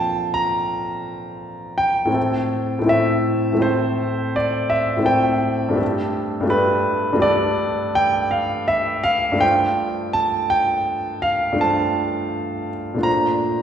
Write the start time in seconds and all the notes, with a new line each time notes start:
Already playing: A#2 F3 C4 D4 A4 F5 G5 A5
0.34 A#5
1.78 G5
2.05 A2 A3 C4
2.11 E4 A4
2.79 A2 A3
2.83 C4 E4
2.88 A4 E5
3.53 A2 A3
3.57 C4 E4 A4
3.62 C5
4.36 D5
4.70 E5
4.97 A2 A3 C4
5.03 E4 A4 G5
5.69 G2 A3 D4
5.76 G4 A4
6.41 G2 A3
6.45 D4 G4 A4
6.50 B4
7.13 G2 A3
7.17 D4 G4
7.21 A4 D5
7.95 G5
8.31 F5
8.68 E5
9.04 F5
9.32 G2 A3
9.36 D4 F4 C5
9.41 G5
10.13 A5
10.50 G5
11.22 F5
11.52 G2 A3 D4
11.58 F4 C5 A5
12.94 A#2 A3 D4
13.00 F4 C5 A#5